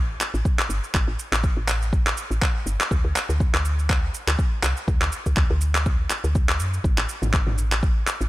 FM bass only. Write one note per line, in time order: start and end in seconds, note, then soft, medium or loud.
0.00 0.16 A1 loud
0.34 0.42 A1 medium
0.69 0.80 G1 medium
0.94 1.05 A1 loud
1.08 1.16 A1 medium
1.32 1.50 A1 medium
1.57 2.13 A1 medium
2.31 2.39 A1 medium
2.66 2.77 G1 medium
2.91 3.02 D2 loud
3.04 3.13 D2 medium
3.29 3.47 D2 medium
3.54 4.10 D2 medium
4.27 4.36 D2 medium
4.63 4.74 C2 medium
4.88 4.98 D2 loud
5.01 5.10 D2 medium
5.26 5.44 D2 medium
5.50 6.06 D2 loud
6.24 6.61 D2 medium
6.59 6.79 F#2 medium
6.84 6.95 A1 loud
6.98 7.06 A1 medium
7.22 7.41 A1 medium
7.47 8.03 A1 loud
8.21 8.29 A1 medium